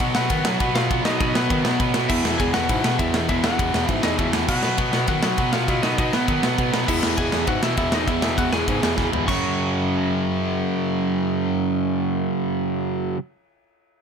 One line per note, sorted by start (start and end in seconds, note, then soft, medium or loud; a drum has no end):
0.00 0.13 B2 loud
0.00 0.15 B2 loud
0.00 0.15 F#3 loud
0.00 0.15 B3 loud
0.00 0.12 F#4 medium
0.00 0.14 F#5 loud
0.00 kick loud
0.15 0.28 B2 medium
0.15 0.29 F#3 medium
0.15 0.30 B3 loud
0.15 0.72 F#4 medium
0.15 0.77 F#5 loud
0.15 snare loud
0.30 0.46 B2 loud
0.30 0.43 D#3 loud
0.30 0.45 F#3 loud
0.30 0.46 B3 loud
0.30 kick loud
0.30 ride loud
0.45 0.58 B2 medium
0.45 0.58 F#3 medium
0.45 0.59 F#3 medium
0.45 0.60 B3 loud
0.45 snare loud
0.59 0.75 B2 medium
0.59 0.86 B2 medium
0.59 0.75 F#3 loud
0.59 0.75 B3 loud
0.59 kick loud
0.59 ride medium
0.75 0.90 B2 medium
0.75 0.90 F#3 medium
0.75 0.91 B3 medium
0.75 1.04 F4 medium
0.75 1.05 F5 loud
0.75 snare loud
0.90 1.03 B2 loud
0.90 1.05 B2 medium
0.90 1.05 F#3 loud
0.90 1.05 B3 loud
0.90 kick loud
0.90 ride medium
1.04 1.17 B2 medium
1.04 1.20 B2 medium
1.04 1.20 F#3 medium
1.04 1.22 B3 medium
1.04 1.19 D#4 medium
1.04 1.18 D#5 loud
1.04 snare loud
1.19 1.33 B2 loud
1.19 1.36 B2 medium
1.19 1.36 F#3 loud
1.19 1.36 B3 loud
1.19 1.34 D#4 medium
1.19 1.35 D#5 medium
1.19 kick loud
1.19 ride medium
1.34 1.47 B2 medium
1.34 1.50 B2 medium
1.34 1.50 F#3 medium
1.34 1.91 B3 medium
1.34 1.51 B3 loud
1.34 1.90 B4 loud
1.34 snare loud
1.50 1.64 B2 loud
1.50 1.63 D#3 loud
1.50 1.64 F#3 loud
1.50 1.64 B3 loud
1.50 kick loud
1.50 ride medium
1.64 1.78 B2 loud
1.64 1.78 B2 medium
1.64 1.79 F#3 medium
1.64 1.80 B3 loud
1.64 snare loud
1.79 1.94 B2 loud
1.79 1.92 B2 medium
1.79 1.93 F#3 loud
1.79 1.94 B3 loud
1.79 kick loud
1.79 ride medium
1.94 2.07 B2 medium
1.94 2.08 B2 medium
1.94 2.09 F#3 loud
1.94 4.49 B3 medium
1.94 snare loud
2.09 2.25 E2 loud
2.09 2.22 E2 loud
2.09 2.23 B2 loud
2.09 2.24 E3 loud
2.09 2.38 E4 medium
2.09 2.40 E5 loud
2.09 kick loud
2.09 crash loud
2.24 2.37 E2 medium
2.24 2.38 E2 medium
2.24 2.38 B2 medium
2.24 2.40 E3 loud
2.24 snare loud
2.38 2.55 E2 loud
2.38 2.52 E2 loud
2.38 2.54 B2 loud
2.38 2.54 E3 loud
2.38 2.54 G#4 medium
2.38 2.53 G#5 loud
2.38 kick loud
2.38 ride medium
2.53 2.67 E2 loud
2.53 2.68 E2 medium
2.53 2.68 B2 medium
2.53 2.69 E3 loud
2.53 2.97 F#4 medium
2.53 3.00 F#5 loud
2.53 snare loud
2.69 2.85 E2 loud
2.69 2.82 G#2 loud
2.69 2.84 B2 loud
2.69 2.84 E3 loud
2.69 kick loud
2.69 ride medium
2.83 2.98 E2 medium
2.83 2.97 B2 loud
2.83 2.98 B2 medium
2.83 2.99 E3 loud
2.83 snare loud
2.99 3.25 E2 loud
2.99 3.14 E2 loud
2.99 3.13 B2 loud
2.99 3.13 E3 loud
2.99 3.28 E4 medium
2.99 3.28 E5 loud
2.99 kick loud
2.99 ride medium
3.14 3.28 E2 medium
3.14 3.28 B2 medium
3.14 3.29 E3 loud
3.14 snare loud
3.29 3.42 E2 loud
3.29 3.44 E2 medium
3.29 3.44 B2 loud
3.29 3.43 E3 loud
3.29 3.44 E4 medium
3.29 3.45 E5 loud
3.29 kick loud
3.29 ride medium
3.44 3.57 E2 medium
3.44 3.58 B2 loud
3.44 3.58 E3 loud
3.44 4.01 F#4 medium
3.44 3.92 F#5 loud
3.44 snare loud
3.59 3.74 E2 medium
3.59 3.72 E2 loud
3.59 3.73 B2 loud
3.59 3.73 E3 loud
3.59 kick loud
3.59 ride medium
3.74 3.87 E2 loud
3.74 3.87 E2 medium
3.74 3.87 B2 medium
3.74 3.88 E3 loud
3.74 snare loud
3.88 4.03 E2 loud
3.88 4.01 G#2 loud
3.88 4.03 B2 loud
3.88 4.03 E3 loud
3.88 kick loud
3.88 ride medium
3.92 4.06 E5 loud
4.03 4.17 E2 loud
4.03 4.17 E2 medium
4.03 4.17 B2 medium
4.03 4.18 E3 medium
4.03 4.18 D#4 medium
4.03 4.19 D#5 loud
4.03 snare loud
4.18 4.32 E2 loud
4.18 4.32 B2 loud
4.18 4.32 E3 loud
4.18 4.48 E4 medium
4.18 4.49 E5 loud
4.18 kick loud
4.18 ride medium
4.33 4.46 E2 medium
4.33 4.48 E2 medium
4.33 4.47 B2 medium
4.33 4.48 E3 loud
4.33 snare loud
4.48 4.61 B2 loud
4.48 4.64 B2 loud
4.48 4.63 F#3 medium
4.48 4.63 B3 loud
4.48 5.06 F#4 medium
4.48 5.07 F#5 loud
4.48 kick loud
4.48 crash loud
4.63 4.76 B2 medium
4.63 4.77 B2 medium
4.63 4.78 F#3 medium
4.63 4.78 B3 medium
4.63 snare loud
4.77 4.92 B2 loud
4.77 4.91 B2 loud
4.77 4.92 F#3 loud
4.77 4.92 B3 loud
4.77 kick loud
4.77 ride medium
4.92 5.06 B2 loud
4.92 5.07 B2 medium
4.92 5.08 F#3 medium
4.92 5.09 B3 loud
4.92 snare loud
5.07 5.23 B2 loud
5.07 5.21 D#3 loud
5.07 5.22 F#3 loud
5.07 5.23 B3 loud
5.07 5.52 F#4 medium
5.07 5.53 F#5 loud
5.07 kick loud
5.07 ride medium
5.22 5.37 B2 medium
5.22 5.36 F#3 loud
5.22 5.37 F#3 medium
5.22 5.39 B3 medium
5.22 snare loud
5.38 5.64 B2 medium
5.38 5.53 B2 loud
5.38 5.53 F#3 loud
5.38 5.53 B3 loud
5.38 kick loud
5.38 ride medium
5.53 5.67 B2 medium
5.53 5.67 F#3 medium
5.53 5.68 B3 medium
5.53 5.82 F4 medium
5.53 5.84 F5 loud
5.53 snare loud
5.68 5.83 B2 medium
5.68 5.81 B2 loud
5.68 5.83 F#3 loud
5.68 5.83 B3 loud
5.68 kick loud
5.68 ride medium
5.82 5.96 B2 medium
5.82 5.97 B2 medium
5.82 5.98 F#3 loud
5.82 5.99 B3 medium
5.82 5.98 D#4 medium
5.82 5.97 D#5 loud
5.82 snare loud
5.98 6.11 B2 loud
5.98 6.13 B2 loud
5.98 6.13 F#3 loud
5.98 6.13 B3 loud
5.98 6.13 D#4 medium
5.98 6.12 D#5 medium
5.98 kick loud
5.98 ride medium
6.13 6.26 B2 medium
6.13 6.27 F#3 loud
6.13 6.28 B3 loud
6.13 6.70 B3 medium
6.13 6.69 B4 medium
6.13 snare loud
6.28 6.44 B2 medium
6.28 6.41 D#3 loud
6.28 6.43 F#3 loud
6.28 6.43 B3 loud
6.28 kick loud
6.28 ride medium
6.42 6.55 B2 loud
6.42 6.57 B2 medium
6.42 6.57 F#3 medium
6.42 6.58 B3 medium
6.42 snare loud
6.58 6.72 B2 loud
6.58 6.71 B2 loud
6.58 6.72 F#3 loud
6.58 6.72 B3 loud
6.58 kick loud
6.58 ride medium
6.73 6.86 B2 loud
6.73 6.87 B2 medium
6.73 6.87 F#3 medium
6.73 9.30 B3 loud
6.73 snare loud
6.87 7.02 E2 loud
6.87 7.01 E2 loud
6.87 7.01 B2 loud
6.87 7.01 E3 loud
6.87 7.17 E4 medium
6.87 7.19 E5 medium
6.87 kick loud
6.87 crash loud
7.02 7.17 E2 medium
7.02 7.16 E2 loud
7.02 7.17 B2 medium
7.02 7.18 E3 medium
7.02 snare loud
7.17 7.32 E2 loud
7.17 7.31 E2 loud
7.17 7.31 B2 loud
7.17 7.31 E3 loud
7.17 7.47 G#4 medium
7.17 7.48 G#5 loud
7.17 kick loud
7.17 ride medium
7.32 7.45 E2 loud
7.32 7.46 E2 medium
7.32 7.47 B2 loud
7.32 7.47 E3 loud
7.32 snare loud
7.47 7.62 E2 loud
7.47 7.60 G#2 loud
7.47 7.62 B2 loud
7.47 7.62 E3 loud
7.47 7.63 F#4 medium
7.47 7.63 F#5 loud
7.47 kick loud
7.47 ride medium
7.62 7.76 E2 medium
7.62 7.75 B2 loud
7.62 7.76 B2 loud
7.62 7.77 E3 loud
7.62 7.78 E4 medium
7.62 7.77 E5 loud
7.62 snare loud
7.77 8.03 E2 medium
7.77 7.93 E2 medium
7.77 7.92 B2 loud
7.77 7.92 E3 loud
7.77 7.93 E4 medium
7.77 7.94 E5 medium
7.77 kick loud
7.77 ride medium
7.92 8.06 E2 medium
7.92 8.07 B2 medium
7.92 8.07 E3 loud
7.92 8.08 D#4 medium
7.92 8.09 D#5 medium
7.92 snare loud
8.07 8.22 E2 loud
8.07 8.20 E2 loud
8.07 8.22 B2 loud
8.07 8.21 E3 loud
8.07 8.36 E4 medium
8.07 8.36 E5 medium
8.07 kick loud
8.07 ride medium
8.22 8.36 E2 medium
8.22 8.36 B2 medium
8.22 8.36 E3 loud
8.22 snare loud
8.37 8.53 E2 medium
8.37 8.50 E2 loud
8.37 8.52 B2 loud
8.37 8.51 E3 loud
8.37 8.52 F#4 medium
8.37 8.52 F#5 loud
8.37 kick loud
8.37 ride medium
8.52 8.66 E2 loud
8.52 8.66 E2 medium
8.52 8.66 B2 medium
8.52 8.66 E3 loud
8.52 9.09 G#4 medium
8.52 9.09 G#5 medium
8.52 snare loud
8.67 8.82 E2 loud
8.67 8.81 G#2 loud
8.67 8.81 B2 loud
8.67 8.80 E3 loud
8.67 kick loud
8.67 ride medium
8.82 8.95 E2 loud
8.82 8.95 E2 medium
8.82 8.96 B2 medium
8.82 8.96 E3 loud
8.82 snare loud
8.96 9.12 E2 loud
8.96 9.10 E2 loud
8.96 9.11 B2 loud
8.96 9.11 E3 loud
8.96 kick loud
8.96 snare medium
9.12 9.25 E2 medium
9.12 9.27 B2 medium
9.12 9.27 E3 loud
9.12 floor tom loud
9.25 13.16 F#2 loud
9.25 12.44 F#2 loud
9.25 13.18 C#3 loud
9.25 12.44 C#6 loud
9.25 kick loud
9.25 crash medium
9.30 13.19 F#3 loud